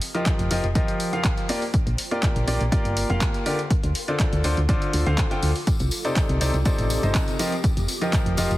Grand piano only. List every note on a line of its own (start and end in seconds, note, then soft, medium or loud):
0.14 0.48 F3 medium
0.14 0.48 F4 medium
0.14 0.48 G4 medium
0.14 0.48 A#4 medium
0.14 0.48 D#5 medium
0.51 0.63 F3 medium
0.51 0.63 F4 medium
0.51 0.63 G4 medium
0.51 0.63 A#4 medium
0.51 0.63 D#5 loud
0.75 1.10 F3 medium
0.75 1.10 F4 medium
0.75 1.10 G4 medium
0.75 1.10 A#4 medium
0.75 1.10 D#5 loud
1.13 1.46 F3 medium
1.13 1.46 F4 medium
1.13 1.46 G4 medium
1.13 1.46 A#4 medium
1.13 1.46 F5 medium
1.49 1.61 A#3 loud
1.49 1.61 F4 medium
1.49 1.61 G4 medium
1.49 1.61 A#4 medium
1.49 1.61 D5 loud
2.11 2.45 A#3 medium
2.11 2.45 F4 medium
2.11 2.45 G4 medium
2.11 2.45 A#4 medium
2.11 2.45 D5 medium
2.47 2.59 A#3 medium
2.47 2.59 F4 medium
2.47 2.59 G4 medium
2.47 2.59 A#4 medium
2.47 2.59 D5 loud
2.72 3.07 A#3 medium
2.72 3.07 F4 medium
2.72 3.07 G4 medium
2.72 3.07 A#4 medium
2.72 3.07 D5 loud
3.10 3.43 A#3 medium
3.10 3.43 F4 medium
3.10 3.43 G4 medium
3.10 3.43 A#4 medium
3.10 3.43 F5 medium
3.46 3.58 D3 loud
3.46 3.58 F4 medium
3.46 3.58 G4 medium
3.46 3.58 A#4 medium
3.46 3.58 D5 loud
4.08 4.42 D3 medium
4.08 4.41 F4 medium
4.08 4.41 A4 medium
4.08 4.42 C5 medium
4.08 4.41 D5 medium
4.44 4.56 D3 medium
4.44 4.56 F4 medium
4.44 4.56 A4 medium
4.44 4.56 C5 medium
4.44 4.56 D5 loud
4.69 5.03 D3 medium
4.69 5.03 F4 medium
4.69 5.03 A4 medium
4.69 5.03 C5 medium
4.69 5.03 D5 loud
5.06 5.28 D3 medium
5.06 5.28 F4 medium
5.06 5.28 A4 medium
5.06 5.28 C5 medium
5.06 5.28 F5 medium
5.31 5.49 D3 medium
5.31 5.49 F4 medium
5.31 5.49 A4 medium
5.31 5.49 C5 medium
5.31 5.49 G5 loud
6.05 6.38 C3 medium
6.05 6.38 D#4 medium
6.05 6.38 A4 medium
6.05 6.38 C5 medium
6.05 6.38 D5 medium
6.41 6.53 C3 medium
6.41 6.53 D#4 medium
6.41 6.53 A4 medium
6.41 6.53 C5 medium
6.41 6.53 D5 loud
6.66 7.00 C3 medium
6.66 7.00 D#4 medium
6.66 7.00 A4 medium
6.66 7.00 C5 medium
6.66 7.00 D5 loud
7.03 7.37 C3 medium
7.03 7.37 D#4 medium
7.03 7.37 A4 medium
7.03 7.37 C5 medium
7.03 7.37 D#5 medium
7.39 7.51 F3 medium
7.39 7.51 F4 medium
7.39 7.51 G4 medium
7.39 7.51 A#4 medium
7.39 7.51 D#5 loud
8.01 8.35 F3 medium
8.01 8.35 F4 medium
8.01 8.35 G4 medium
8.01 8.35 A#4 medium
8.01 8.35 D#5 medium
8.38 8.50 F3 medium
8.38 8.50 F4 medium
8.38 8.50 G4 medium
8.38 8.50 A#4 medium
8.38 8.50 D#5 loud